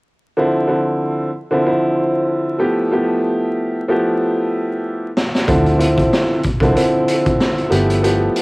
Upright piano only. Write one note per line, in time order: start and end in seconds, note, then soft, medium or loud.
0.37 0.66 D3 loud
0.37 0.66 F3 medium
0.37 0.67 C4 medium
0.37 0.67 E4 loud
0.67 1.28 D3 medium
0.67 1.28 F3 medium
0.67 1.28 C4 medium
0.67 1.28 E4 medium
1.51 1.64 D3 medium
1.51 1.64 F3 medium
1.51 1.65 C4 medium
1.51 1.65 E4 loud
1.65 2.61 D3 medium
1.65 2.57 F3 medium
1.65 2.61 C4 medium
1.65 2.58 E4 loud
2.58 2.89 F3 medium
2.58 2.89 A3 medium
2.58 2.90 B3 medium
2.58 2.90 E4 medium
2.58 2.90 G4 loud
2.91 3.81 F3 medium
2.91 3.81 A3 medium
2.91 3.81 B3 medium
2.91 3.81 E4 medium
2.91 3.82 G4 loud
3.88 5.07 F3 loud
3.88 5.07 A3 medium
3.88 5.07 B3 medium
3.88 5.08 E4 medium
3.88 5.08 G4 loud
5.47 5.76 D3 loud
5.47 5.77 F3 medium
5.47 5.77 C4 medium
5.47 5.78 E4 loud
5.78 6.38 D3 medium
5.78 6.38 F3 medium
5.78 6.39 C4 medium
5.78 6.39 E4 loud
6.61 6.74 D3 loud
6.61 6.75 F3 medium
6.61 6.75 C4 medium
6.61 6.76 E4 loud
6.76 7.71 D3 medium
6.76 7.68 F3 medium
6.76 7.72 C4 medium
6.76 7.69 E4 loud
7.69 8.00 F3 medium
7.69 8.00 A3 medium
7.69 8.00 B3 medium
7.69 8.00 E4 medium
7.69 8.01 G4 loud
8.02 8.42 F3 medium
8.02 8.42 A3 medium
8.02 8.42 B3 medium
8.02 8.42 E4 medium
8.02 8.42 G4 loud